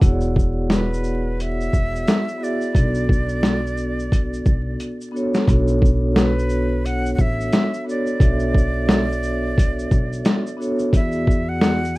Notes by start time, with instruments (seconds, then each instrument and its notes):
Already playing: vibraphone F#5
0.00 upright bass E1, vibraphone B3 E4 F#4 G#4, kick, closed hi-hat, shaker
0.05 vibraphone C#5
0.12 vibraphone D5
0.21 shaker
0.36 kick, shaker
0.70 snare, closed hi-hat, shaker
0.74 flute B4
0.93 shaker
1.04 shaker
1.40 flute E5, closed hi-hat, shaker
1.61 shaker
1.73 upright bass E1, kick, shaker
1.96 shaker
2.07 snare, closed hi-hat, shaker
2.28 shaker
2.38 vibraphone B3 E4 F#4 G#4
2.43 flute D5, vibraphone E5, shaker
2.61 shaker
2.73 upright bass B1, vibraphone B3 D4 F#4 A4, kick, closed hi-hat, shaker
2.78 vibraphone D5
2.94 shaker
3.09 kick, shaker
3.29 shaker
3.43 snare, closed hi-hat, shaker
3.67 shaker
3.77 shaker
3.99 shaker
4.12 kick, closed hi-hat, shaker
4.33 shaker
4.46 upright bass B1, kick, shaker
4.80 closed hi-hat, shaker
5.01 shaker
5.12 vibraphone B3 D4 F#4 A4
5.16 vibraphone C#5, shaker
5.34 snare, shaker
5.46 upright bass B1, vibraphone B3 D4 F#4 A4, kick, closed hi-hat, shaker
5.50 vibraphone C#5
5.67 shaker
5.82 kick, shaker
6.12 flute A#4, snare
6.18 flute B4, closed hi-hat, shaker
6.39 shaker
6.49 shaker
6.86 flute F#5, closed hi-hat, shaker
7.06 shaker
7.15 flute F#5, kick, shaker
7.19 upright bass A1, flute E5
7.40 shaker
7.52 snare, closed hi-hat, shaker
7.74 shaker
7.84 vibraphone B3 D4 F#4 A4
7.89 vibraphone C#5, flute D5, shaker
8.07 shaker
8.18 upright bass B1, vibraphone B3 D4 F#4 A4, kick, closed hi-hat, shaker
8.23 vibraphone E5
8.40 shaker
8.55 kick, shaker
8.89 snare, closed hi-hat, shaker
9.12 shaker
9.23 shaker
9.58 kick, closed hi-hat, shaker
9.79 shaker
9.91 upright bass B1, kick, shaker
10.13 shaker
10.25 snare, closed hi-hat, shaker
10.47 shaker
10.57 vibraphone B3 D4 F#4 A4
10.61 vibraphone C#5, shaker
10.79 shaker
10.91 upright bass E2, vibraphone B3 E4 F#4 G#4, kick, closed hi-hat, shaker
10.96 vibraphone D5, flute E5
11.12 shaker
11.27 kick, shaker
11.49 flute F#5
11.61 snare, closed hi-hat, shaker
11.85 shaker